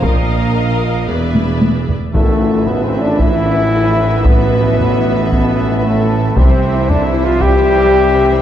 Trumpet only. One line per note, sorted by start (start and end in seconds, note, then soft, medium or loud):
2.13 2.68 A3 medium
2.66 2.86 B3 medium
2.84 3.04 C4 medium
3.02 3.19 D4 medium
3.19 4.27 E4 loud
4.25 5.31 B3 medium
5.32 5.86 B3 medium
5.84 6.38 A3 medium
6.37 6.91 C4 medium
6.89 7.08 D4 medium
7.06 7.26 E4 medium
7.24 7.43 F4 medium
7.41 8.42 G4 loud